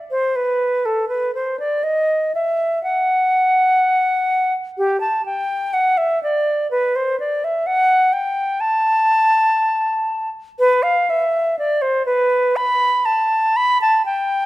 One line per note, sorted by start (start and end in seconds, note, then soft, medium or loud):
0.11 0.37 C5 medium
0.36 0.87 B4 medium
0.85 1.08 A4 medium
1.09 1.34 B4 medium
1.35 1.59 C5 medium
1.60 1.85 D5 medium
1.83 2.33 D#5 medium
2.35 2.82 E5 medium
2.83 4.53 F#5 medium
4.78 5.00 G4 medium
5.01 5.25 A5 medium
5.26 5.75 G5 medium
5.74 5.99 F#5 medium
5.97 6.22 E5 medium
6.23 6.70 D5 medium
6.71 6.97 B4 medium
6.96 7.19 C5 medium
7.20 7.46 D5 medium
7.44 7.68 E5 medium
7.67 8.14 F#5 medium
8.13 8.62 G5 medium
8.61 10.29 A5 loud
10.59 10.84 B4 loud
10.83 11.11 F5 medium
11.10 11.58 E5 medium
11.59 11.83 D5 medium
11.82 12.05 C5 medium
12.06 12.58 B4 medium
12.56 13.07 B5 loud
13.05 13.58 A5 medium
13.56 13.81 B5 loud
13.81 14.05 A5 loud
14.06 14.46 G5 medium